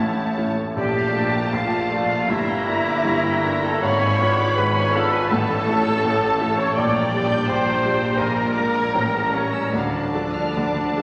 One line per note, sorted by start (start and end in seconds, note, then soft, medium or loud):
0.00 0.57 A1 medium
0.00 0.80 A1 medium
0.00 0.57 A2 medium
0.00 0.80 A2 medium
0.00 0.38 A3 soft
0.00 2.26 A3 medium
0.00 0.37 C#4 soft
0.00 0.41 C#4 medium
0.00 0.35 E4 medium
0.00 0.38 E4 medium
0.00 0.54 C#5 medium
0.00 0.37 E5 medium
0.00 0.53 A5 medium
0.37 0.73 A3 soft
0.37 0.73 C#4 soft
0.37 0.74 E4 soft
0.76 1.14 A#1 soft
0.76 2.31 A#1 medium
0.76 2.26 A#1 medium
0.76 1.14 A#2 medium
0.76 2.26 A#2 medium
0.76 5.26 D4 medium
0.76 1.54 G4 medium
0.76 1.56 G4 medium
0.76 1.50 G4 medium
0.76 0.96 D5 soft
0.76 1.56 G5 medium
0.76 2.25 A5 medium
0.98 1.16 F5 soft
1.13 1.49 A3 soft
1.13 1.49 D4 medium
1.13 1.35 A5 soft
1.34 1.54 A#5 soft
1.53 1.90 A#1 medium
1.53 1.90 A#2 medium
1.53 2.30 F4 medium
1.53 2.31 F4 medium
1.53 2.30 F4 medium
1.53 2.31 F5 medium
1.53 1.73 A5 soft
1.73 1.92 F5 soft
1.91 2.25 A3 soft
1.91 2.25 D4 soft
1.91 2.11 D5 soft
2.09 2.29 F5 soft
2.27 2.65 G1 medium
2.27 3.81 G1 medium
2.27 3.83 G1 medium
2.27 2.65 G2 medium
2.27 3.83 G2 medium
2.27 3.80 A#3 medium
2.27 3.64 E4 medium
2.27 3.63 E4 medium
2.27 3.64 E4 medium
2.27 3.65 E5 medium
2.27 2.47 E5 soft
2.27 3.80 A#5 medium
2.47 2.67 G5 soft
2.67 3.02 A#3 soft
2.67 3.02 D4 soft
2.67 3.02 E4 soft
2.67 2.86 A#5 soft
2.86 3.05 D6 soft
3.04 3.42 G1 medium
3.04 3.42 G2 medium
3.04 3.25 A#5 soft
3.25 3.44 G5 soft
3.44 3.79 A#3 soft
3.44 3.79 D4 soft
3.44 3.80 E4 soft
3.44 3.63 E5 soft
3.63 3.82 A4 medium
3.63 3.81 A4 medium
3.63 3.83 A4 medium
3.63 3.83 G5 medium
3.63 3.83 A5 medium
3.82 5.26 G#1 medium
3.82 4.19 G#1 soft
3.82 5.27 G#1 medium
3.82 5.27 G#2 medium
3.82 4.19 G#2 medium
3.82 5.27 B3 medium
3.82 4.58 C#5 medium
3.82 4.57 C#5 medium
3.82 4.00 F5 medium
3.82 5.26 B5 medium
3.82 4.60 C#6 medium
4.01 4.20 G#5 medium
4.19 4.53 B3 soft
4.19 4.54 D4 soft
4.19 4.54 F4 medium
4.19 4.38 B5 soft
4.39 4.57 D6 soft
4.55 4.92 G#1 medium
4.55 4.93 G#2 medium
4.55 4.77 B4 medium
4.55 4.75 B4 medium
4.55 4.74 B5 soft
4.55 4.77 B5 medium
4.74 4.95 C#5 medium
4.74 4.93 C#5 medium
4.74 4.92 G#5 medium
4.74 4.97 C#6 medium
4.91 5.27 B3 soft
4.91 5.27 D4 soft
4.91 5.13 A4 medium
4.91 5.11 A4 medium
4.91 5.13 A4 medium
4.91 5.11 F5 medium
4.91 5.12 A5 medium
4.96 5.28 F4 medium
5.11 5.30 B4 medium
5.11 5.32 B4 medium
5.11 5.29 G#5 soft
5.11 5.34 B5 medium
5.29 6.73 A1 medium
5.29 6.77 A1 medium
5.29 5.67 A1 medium
5.29 6.73 A2 medium
5.29 5.67 A2 medium
5.29 6.76 A3 medium
5.29 6.72 C#4 medium
5.29 6.59 A4 medium
5.29 6.57 A4 medium
5.29 6.58 A4 medium
5.29 6.73 C#5 medium
5.29 5.47 E5 medium
5.29 6.76 A5 medium
5.29 6.60 A5 medium
5.49 5.67 A5 soft
5.66 6.00 A3 soft
5.66 6.01 C#4 soft
5.66 6.01 E4 medium
5.66 5.84 C#6 medium
5.84 6.02 E6 soft
6.01 6.39 A1 medium
6.01 6.39 A2 medium
6.01 6.20 C#6 medium
6.20 6.38 A5 medium
6.37 6.73 A3 soft
6.37 6.56 E5 soft
6.41 6.73 C#4 soft
6.41 6.73 E4 soft
6.55 6.75 C#5 medium
6.55 6.76 C#5 medium
6.55 6.75 A5 medium
6.55 6.80 C#6 medium
6.73 8.78 A#1 medium
6.73 8.94 A#1 medium
6.73 8.95 A#2 medium
6.73 8.16 G3 medium
6.73 8.94 D4 medium
6.73 8.93 D5 medium
6.73 7.22 D5 medium
6.73 7.23 D5 medium
6.73 7.47 D5 medium
6.73 6.92 G5 medium
6.73 8.16 G5 medium
6.78 7.12 A#1 medium
6.78 7.12 A#2 medium
6.78 7.24 D6 medium
6.93 7.12 A#5 soft
7.11 7.45 G3 soft
7.11 7.45 D4 soft
7.11 7.46 G4 medium
7.11 7.30 D6 soft
7.29 7.47 G6 soft
7.48 7.82 A#1 medium
7.48 7.82 A#2 soft
7.48 8.19 C5 medium
7.48 8.20 C5 medium
7.48 8.19 C5 medium
7.48 8.22 C6 medium
7.48 7.65 D6 soft
7.65 7.82 A#5 soft
7.84 8.16 G3 soft
7.84 8.16 D4 soft
7.84 8.16 G4 soft
7.84 8.01 G5 soft
8.00 8.18 A#5 soft
8.18 8.55 A#1 soft
8.18 8.55 A#2 medium
8.18 8.95 G#3 medium
8.18 8.96 A#4 medium
8.18 9.35 A#4 medium
8.18 9.34 A#4 medium
8.18 8.35 G#5 soft
8.18 9.74 A#5 soft
8.18 9.37 A#5 medium
8.38 8.56 A#5 soft
8.56 8.91 G#3 soft
8.56 8.91 D4 soft
8.56 8.92 A#4 soft
8.56 8.75 D6 soft
8.75 8.94 G#6 soft
8.94 9.76 A1 soft
8.94 9.33 A1 soft
8.94 9.73 A1 soft
8.94 9.33 A2 soft
8.94 9.73 A2 soft
8.94 10.56 G3 soft
8.94 9.73 C#4 soft
8.94 9.07 C5 medium
8.94 9.73 C#5 soft
8.94 9.13 G5 soft
9.06 9.15 A#4 medium
9.14 9.24 G#4 soft
9.14 9.34 A5 soft
9.23 9.33 A#4 soft
9.31 9.70 G3 soft
9.31 9.71 C#4 soft
9.31 9.74 C#4 soft
9.31 9.70 C#4 soft
9.31 9.74 C#4 soft
9.31 9.70 A#4 soft
9.31 9.54 C#6 soft
9.36 9.75 C#5 soft
9.53 9.74 E6 soft
9.72 10.13 D2 soft
9.72 11.02 D2 soft
9.72 10.13 D3 soft
9.72 11.02 D3 soft
9.72 11.02 D4 medium
9.72 11.02 D4 soft
9.72 11.02 D5 soft
9.72 9.93 F5 soft
9.72 11.02 A5 soft
9.76 11.02 D5 soft
9.94 10.15 A5 soft
10.14 10.52 F3 soft
10.14 10.52 D4 soft
10.14 10.52 A4 soft
10.14 10.36 D6 soft
10.34 10.56 F6 soft
10.56 10.97 D2 soft
10.56 10.97 D3 soft
10.56 11.02 F3 soft
10.56 10.77 D6 soft
10.75 10.97 A5 soft
10.97 11.02 F3 soft
10.97 11.02 D4 soft
10.97 11.02 A4 soft
10.97 11.02 F5 soft